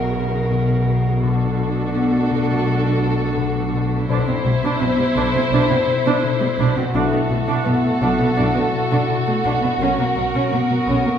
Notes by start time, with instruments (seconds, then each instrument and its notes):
Already playing: double bass section B1, cello section B2, viola section C#3, french horn section F#4 A#4, violin section F#4 A#4, vibraphone D5 F#5
0.15 marimba B2
0.51 marimba B2
0.87 marimba B2
1.23 marimba B2, french horn section A3 D4, viola section D4, violin section F#4 A4
1.59 marimba B2
1.95 marimba B3
2.31 marimba B2
2.67 marimba B2
3.02 marimba B2
3.37 marimba B2
3.74 marimba B2
4.08 double bass section B1, cello section B2, marimba B2, french horn section D4 C5, viola section D4, violin section E4 C5
4.27 cello section B2, viola section C4
4.44 double bass section B1, cello section B2, marimba B2, viola section G3
4.62 cello section B2, viola section D4
4.80 double bass section B1, cello section B2, marimba B3, viola section C4
4.98 cello section B2, viola section G3
5.15 double bass section B1, marimba B2, cello section B2, viola section D4
5.34 cello section B2, viola section C4
5.52 double bass section B1, cello section B2, marimba B2, french horn section D4 C5, viola section D4
5.69 cello section B2, viola section C4
5.87 marimba B2
6.05 cello section B2, viola section D4
6.23 marimba B2
6.41 cello section B2, viola section G3
6.59 double bass section B1, cello section B2, marimba B2, viola section D4
6.77 cello section B2, viola section C4
6.94 double bass section B1, cello section B2, marimba B2, french horn section A3 D4, viola section D4, vibraphone E4 E5, violin section F#4 A4
7.12 cello section B2, viola section B3
7.30 double bass section B1, cello section B2, marimba B2, viola section A3
7.48 cello section B2, viola section D4
7.66 double bass section B1, cello section B2, viola section B3, marimba B3
7.83 cello section B2, viola section A3
8.01 double bass section B1, marimba B2, cello section B2, viola section D4
8.20 cello section B2, viola section B3
8.37 double bass section B1, marimba B2, cello section B2, french horn section A3 D4, viola section D4
8.56 cello section B2, viola section B3
8.73 marimba B2
8.91 cello section B2, viola section D4
9.09 marimba B2
9.26 cello section B2, viola section A3
9.44 double bass section B1, cello section B2, marimba B2, viola section D4, vibraphone F#5
9.62 cello section B2, viola section B3
9.79 double bass section B1, cello section B2, marimba B2, french horn section A#3 F#4, viola section C#4, violin section A#4 C#6
9.98 cello section B2, viola section A#3
10.16 double bass section B1, marimba B2, cello section B2, viola section F#3
10.34 cello section B2, viola section C#4
10.51 double bass section B1, cello section B2, viola section A#3, marimba B3, violin section D#6
10.70 cello section B2, viola section F#3
10.87 double bass section B1, marimba B2, cello section B2, viola section C#4
11.05 cello section B2, viola section A#3